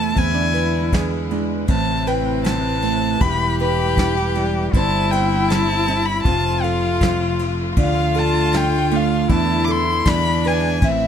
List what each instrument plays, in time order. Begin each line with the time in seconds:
Already playing: fretless electric bass E2, string section C3 E3 A3 E4, nylon-string guitar E3 A3 C4 E4 C5, cello E4, violin A5
0.15 fretless electric bass E2, nylon-string guitar E3 C4, cello E4, violin G#5, kick, ride
0.19 string section D3 G#3 B4
0.34 nylon-string guitar D4
0.54 nylon-string guitar B4, ride
0.92 nylon-string guitar G#4, kick, snare, ride
1.31 nylon-string guitar G#3 D4, ride
1.68 fretless electric bass A1, nylon-string guitar A2 C4, string section C3 A3 E4, cello C4, violin A5, kick, ride
2.07 nylon-string guitar B4, violin G5, ride
2.44 nylon-string guitar E4, violin A5, snare, ride
2.82 nylon-string guitar A3 C4, ride
3.21 fretless electric bass E1, string section E3 G3 G4, nylon-string guitar E3 E4, cello G4, violin B5, kick, ride
3.59 nylon-string guitar B4, violin B5, ride
3.97 nylon-string guitar E4, kick, snare, ride
4.17 nylon-string guitar G4
4.35 nylon-string guitar G3 E4, ride
4.71 fretless electric bass G1, string section D3 G3 C4 E4, nylon-string guitar G3, cello E4, kick, ride
4.75 nylon-string guitar C4 E4 C5, violin A5
5.11 nylon-string guitar C5, violin G5, ride
5.49 nylon-string guitar C5, violin A5, snare, ride
5.88 nylon-string guitar C4 E4, ride
6.05 violin B5
6.23 fretless electric bass F1, string section C3 F3 A3 F4, nylon-string guitar F3 C4, cello F4, violin A5, kick, ride
6.63 nylon-string guitar A4, violin F5, ride
7.01 nylon-string guitar F3, kick, snare, ride
7.39 ride
7.76 fretless electric bass D2, nylon-string guitar D3 D4, string section D3, cello F4, kick, ride
7.80 violin F5
8.14 nylon-string guitar A4, ride
8.19 violin A5
8.52 nylon-string guitar F4, violin G5, snare, ride
8.91 nylon-string guitar A3 D4, ride
8.96 violin F5
9.29 fretless electric bass E2, nylon-string guitar E3 D4, string section B3 E4, cello E4, kick, ride
9.33 violin A5
9.64 violin D6, ride
9.69 nylon-string guitar A4, violin C6
10.05 fretless electric bass E2, nylon-string guitar E3 D4, string section G#3 E4, cello D4, violin B5, kick, snare, ride
10.44 nylon-string guitar B4, violin G#5, ride
10.82 fretless electric bass A1, nylon-string guitar A2 C4, string section C3 E3 A3, cello C4, violin E5, kick, ride